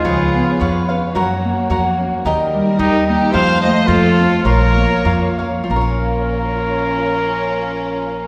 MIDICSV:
0, 0, Header, 1, 7, 480
1, 0, Start_track
1, 0, Key_signature, -5, "minor"
1, 0, Tempo, 549954
1, 48, Time_signature, 2, 2, 24, 8
1, 3888, Tempo, 619835
1, 4848, Tempo, 659341
1, 6725, End_track
2, 0, Start_track
2, 0, Title_t, "Cavaquinho"
2, 0, Program_c, 0, 24
2, 40, Note_on_c, 0, 68, 67
2, 42, Note_on_c, 0, 71, 78
2, 43, Note_on_c, 0, 73, 80
2, 47, Note_on_c, 0, 77, 77
2, 511, Note_off_c, 0, 68, 0
2, 519, Note_off_c, 0, 73, 0
2, 521, Note_on_c, 0, 68, 60
2, 523, Note_off_c, 0, 71, 0
2, 528, Note_off_c, 0, 77, 0
2, 529, Note_on_c, 0, 73, 60
2, 533, Note_on_c, 0, 71, 76
2, 541, Note_on_c, 0, 77, 67
2, 763, Note_off_c, 0, 77, 0
2, 772, Note_off_c, 0, 71, 0
2, 774, Note_on_c, 0, 77, 50
2, 780, Note_off_c, 0, 68, 0
2, 782, Note_off_c, 0, 73, 0
2, 782, Note_on_c, 0, 71, 46
2, 793, Note_on_c, 0, 73, 39
2, 1002, Note_off_c, 0, 73, 0
2, 1002, Note_on_c, 0, 66, 69
2, 1006, Note_off_c, 0, 77, 0
2, 1007, Note_on_c, 0, 70, 78
2, 1009, Note_off_c, 0, 71, 0
2, 1012, Note_on_c, 0, 73, 80
2, 1015, Note_on_c, 0, 78, 85
2, 1471, Note_off_c, 0, 66, 0
2, 1479, Note_off_c, 0, 70, 0
2, 1480, Note_off_c, 0, 73, 0
2, 1482, Note_on_c, 0, 66, 69
2, 1489, Note_on_c, 0, 70, 66
2, 1490, Note_off_c, 0, 78, 0
2, 1490, Note_on_c, 0, 73, 67
2, 1500, Note_on_c, 0, 78, 73
2, 1958, Note_off_c, 0, 70, 0
2, 1963, Note_off_c, 0, 66, 0
2, 1968, Note_off_c, 0, 73, 0
2, 1968, Note_on_c, 0, 67, 80
2, 1969, Note_on_c, 0, 70, 75
2, 1973, Note_off_c, 0, 78, 0
2, 1975, Note_on_c, 0, 75, 94
2, 1981, Note_on_c, 0, 79, 81
2, 2420, Note_off_c, 0, 67, 0
2, 2427, Note_off_c, 0, 70, 0
2, 2429, Note_off_c, 0, 75, 0
2, 2431, Note_on_c, 0, 67, 52
2, 2433, Note_off_c, 0, 79, 0
2, 2438, Note_on_c, 0, 70, 59
2, 2439, Note_on_c, 0, 75, 72
2, 2443, Note_on_c, 0, 79, 61
2, 2899, Note_off_c, 0, 67, 0
2, 2902, Note_on_c, 0, 65, 70
2, 2907, Note_off_c, 0, 70, 0
2, 2909, Note_off_c, 0, 75, 0
2, 2911, Note_off_c, 0, 79, 0
2, 2911, Note_on_c, 0, 69, 74
2, 2912, Note_on_c, 0, 72, 84
2, 2914, Note_on_c, 0, 77, 89
2, 3382, Note_off_c, 0, 69, 0
2, 3385, Note_off_c, 0, 65, 0
2, 3387, Note_off_c, 0, 72, 0
2, 3389, Note_on_c, 0, 65, 69
2, 3393, Note_on_c, 0, 69, 57
2, 3398, Note_off_c, 0, 77, 0
2, 3398, Note_on_c, 0, 72, 61
2, 3402, Note_on_c, 0, 77, 78
2, 3879, Note_off_c, 0, 65, 0
2, 3882, Note_off_c, 0, 69, 0
2, 3883, Note_on_c, 0, 65, 69
2, 3886, Note_off_c, 0, 72, 0
2, 3886, Note_on_c, 0, 70, 68
2, 3890, Note_off_c, 0, 77, 0
2, 3890, Note_on_c, 0, 73, 75
2, 3893, Note_on_c, 0, 77, 79
2, 4344, Note_off_c, 0, 65, 0
2, 4344, Note_off_c, 0, 70, 0
2, 4347, Note_on_c, 0, 65, 58
2, 4347, Note_on_c, 0, 70, 61
2, 4350, Note_off_c, 0, 73, 0
2, 4353, Note_on_c, 0, 73, 60
2, 4357, Note_off_c, 0, 77, 0
2, 4360, Note_on_c, 0, 77, 63
2, 4599, Note_off_c, 0, 77, 0
2, 4602, Note_off_c, 0, 73, 0
2, 4608, Note_off_c, 0, 65, 0
2, 4608, Note_off_c, 0, 70, 0
2, 4609, Note_on_c, 0, 77, 45
2, 4611, Note_on_c, 0, 73, 44
2, 4621, Note_on_c, 0, 70, 41
2, 4803, Note_on_c, 0, 65, 62
2, 4848, Note_off_c, 0, 70, 0
2, 4848, Note_off_c, 0, 77, 0
2, 4849, Note_off_c, 0, 73, 0
2, 4857, Note_on_c, 0, 70, 76
2, 4896, Note_on_c, 0, 73, 70
2, 4934, Note_on_c, 0, 77, 64
2, 6725, Note_off_c, 0, 65, 0
2, 6725, Note_off_c, 0, 70, 0
2, 6725, Note_off_c, 0, 73, 0
2, 6725, Note_off_c, 0, 77, 0
2, 6725, End_track
3, 0, Start_track
3, 0, Title_t, "Violin section"
3, 0, Program_c, 1, 48
3, 0, Note_on_c, 1, 68, 65
3, 784, Note_off_c, 1, 68, 0
3, 2439, Note_on_c, 1, 67, 83
3, 2674, Note_off_c, 1, 67, 0
3, 2687, Note_on_c, 1, 67, 80
3, 2896, Note_off_c, 1, 67, 0
3, 2911, Note_on_c, 1, 77, 94
3, 3165, Note_off_c, 1, 77, 0
3, 3171, Note_on_c, 1, 75, 85
3, 3380, Note_off_c, 1, 75, 0
3, 3395, Note_on_c, 1, 69, 84
3, 3889, Note_off_c, 1, 69, 0
3, 3901, Note_on_c, 1, 73, 81
3, 4586, Note_off_c, 1, 73, 0
3, 4858, Note_on_c, 1, 61, 69
3, 6725, Note_off_c, 1, 61, 0
3, 6725, End_track
4, 0, Start_track
4, 0, Title_t, "Trumpet"
4, 0, Program_c, 2, 56
4, 0, Note_on_c, 2, 65, 83
4, 786, Note_off_c, 2, 65, 0
4, 2438, Note_on_c, 2, 63, 103
4, 2674, Note_off_c, 2, 63, 0
4, 2680, Note_on_c, 2, 63, 90
4, 2900, Note_on_c, 2, 72, 106
4, 2913, Note_off_c, 2, 63, 0
4, 3147, Note_off_c, 2, 72, 0
4, 3152, Note_on_c, 2, 72, 101
4, 3381, Note_on_c, 2, 65, 117
4, 3394, Note_off_c, 2, 72, 0
4, 3883, Note_off_c, 2, 65, 0
4, 3890, Note_on_c, 2, 70, 93
4, 4580, Note_off_c, 2, 70, 0
4, 4846, Note_on_c, 2, 70, 78
4, 6725, Note_off_c, 2, 70, 0
4, 6725, End_track
5, 0, Start_track
5, 0, Title_t, "Violin section"
5, 0, Program_c, 3, 48
5, 46, Note_on_c, 3, 65, 74
5, 50, Note_on_c, 3, 59, 75
5, 52, Note_on_c, 3, 73, 75
5, 1001, Note_off_c, 3, 65, 0
5, 1002, Note_off_c, 3, 59, 0
5, 1004, Note_on_c, 3, 58, 67
5, 1005, Note_on_c, 3, 66, 62
5, 1951, Note_off_c, 3, 73, 0
5, 1955, Note_off_c, 3, 58, 0
5, 1956, Note_off_c, 3, 66, 0
5, 1974, Note_on_c, 3, 70, 83
5, 1977, Note_on_c, 3, 63, 64
5, 1979, Note_on_c, 3, 55, 73
5, 2908, Note_off_c, 3, 70, 0
5, 2910, Note_off_c, 3, 63, 0
5, 2911, Note_off_c, 3, 55, 0
5, 2914, Note_on_c, 3, 65, 76
5, 2917, Note_on_c, 3, 72, 78
5, 2920, Note_on_c, 3, 57, 78
5, 3880, Note_off_c, 3, 72, 0
5, 3881, Note_off_c, 3, 57, 0
5, 3891, Note_on_c, 3, 58, 78
5, 3891, Note_on_c, 3, 73, 73
5, 4830, Note_off_c, 3, 65, 0
5, 4840, Note_off_c, 3, 58, 0
5, 4840, Note_off_c, 3, 73, 0
5, 4857, Note_on_c, 3, 73, 76
5, 4858, Note_on_c, 3, 65, 66
5, 4860, Note_on_c, 3, 58, 69
5, 6725, Note_off_c, 3, 58, 0
5, 6725, Note_off_c, 3, 65, 0
5, 6725, Note_off_c, 3, 73, 0
5, 6725, End_track
6, 0, Start_track
6, 0, Title_t, "Harp"
6, 0, Program_c, 4, 46
6, 0, Note_on_c, 4, 51, 96
6, 0, Note_on_c, 4, 56, 70
6, 0, Note_on_c, 4, 60, 84
6, 53, Note_on_c, 4, 53, 83
6, 91, Note_off_c, 4, 56, 0
6, 92, Note_off_c, 4, 51, 0
6, 301, Note_on_c, 4, 59, 65
6, 354, Note_off_c, 4, 60, 0
6, 778, Note_on_c, 4, 61, 62
6, 1010, Note_on_c, 4, 54, 89
6, 1055, Note_off_c, 4, 53, 0
6, 1261, Note_on_c, 4, 58, 69
6, 1313, Note_off_c, 4, 59, 0
6, 1741, Note_off_c, 4, 61, 0
6, 1745, Note_on_c, 4, 61, 72
6, 1966, Note_on_c, 4, 51, 96
6, 2012, Note_off_c, 4, 54, 0
6, 2218, Note_on_c, 4, 55, 74
6, 2692, Note_off_c, 4, 58, 0
6, 2695, Note_on_c, 4, 58, 80
6, 2914, Note_on_c, 4, 53, 99
6, 2959, Note_off_c, 4, 51, 0
6, 2959, Note_off_c, 4, 55, 0
6, 3175, Note_on_c, 4, 57, 75
6, 3227, Note_off_c, 4, 58, 0
6, 3656, Note_on_c, 4, 60, 71
6, 3708, Note_off_c, 4, 61, 0
6, 3880, Note_off_c, 4, 53, 0
6, 3890, Note_on_c, 4, 53, 85
6, 4129, Note_on_c, 4, 58, 74
6, 4176, Note_off_c, 4, 57, 0
6, 4616, Note_on_c, 4, 61, 69
6, 4663, Note_off_c, 4, 60, 0
6, 4797, Note_off_c, 4, 53, 0
6, 4806, Note_on_c, 4, 53, 80
6, 4832, Note_off_c, 4, 58, 0
6, 4835, Note_on_c, 4, 58, 75
6, 4863, Note_off_c, 4, 61, 0
6, 4866, Note_on_c, 4, 61, 70
6, 4894, Note_on_c, 4, 70, 84
6, 6725, Note_off_c, 4, 53, 0
6, 6725, Note_off_c, 4, 58, 0
6, 6725, Note_off_c, 4, 61, 0
6, 6725, Note_off_c, 4, 70, 0
6, 6725, End_track
7, 0, Start_track
7, 0, Title_t, "Upright bass"
7, 0, Program_c, 5, 32
7, 44, Note_on_c, 5, 37, 86
7, 357, Note_off_c, 5, 37, 0
7, 535, Note_on_c, 5, 41, 91
7, 847, Note_off_c, 5, 41, 0
7, 1008, Note_on_c, 5, 42, 77
7, 1322, Note_off_c, 5, 42, 0
7, 1484, Note_on_c, 5, 41, 91
7, 1797, Note_off_c, 5, 41, 0
7, 1964, Note_on_c, 5, 39, 72
7, 2273, Note_off_c, 5, 39, 0
7, 2439, Note_on_c, 5, 39, 103
7, 2747, Note_off_c, 5, 39, 0
7, 2916, Note_on_c, 5, 41, 86
7, 3227, Note_off_c, 5, 41, 0
7, 3387, Note_on_c, 5, 41, 112
7, 3711, Note_off_c, 5, 41, 0
7, 3882, Note_on_c, 5, 34, 92
7, 4185, Note_off_c, 5, 34, 0
7, 4350, Note_on_c, 5, 41, 94
7, 4674, Note_off_c, 5, 41, 0
7, 4851, Note_on_c, 5, 34, 77
7, 6725, Note_off_c, 5, 34, 0
7, 6725, End_track
0, 0, End_of_file